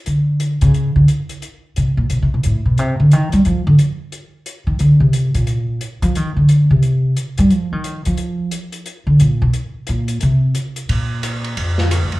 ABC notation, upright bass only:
X:1
M:4/4
L:1/8
Q:"Swing" 1/4=177
K:Bb
V:1 name="Upright bass" clef=bass
D,3 _D,2 =D, z2 | z2 C, B,, (3=B,, C, B,, A,, B,, | C, D, E, G, F, D, z2 | z3 E, D, C,2 B,,- |
B,,2 z F, E, D,2 C,- | C,2 z G, F, E,2 F,- | F,2 z3 D, B,, _C, | z2 B,,2 C,2 z2 |
B,,4 F,,2- (3F,, A,, F,, |]